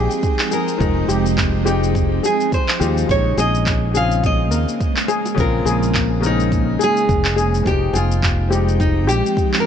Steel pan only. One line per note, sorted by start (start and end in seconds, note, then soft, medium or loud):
0.00 0.22 G4 loud
0.51 0.77 G#4 medium
1.09 1.35 G4 loud
1.66 1.93 G4 loud
2.23 2.49 G#4 medium
2.80 3.06 G4 loud
3.38 3.64 G#4 loud
3.95 4.22 G#4 medium
4.51 4.77 A#4 medium
5.08 5.35 G#4 loud
5.66 5.93 G#4 loud
6.22 6.49 A#4 medium
6.79 7.06 G#4 loud
7.36 7.64 G#4 loud
7.93 8.20 G#4 medium
8.51 8.77 G4 loud
9.07 9.35 G4 loud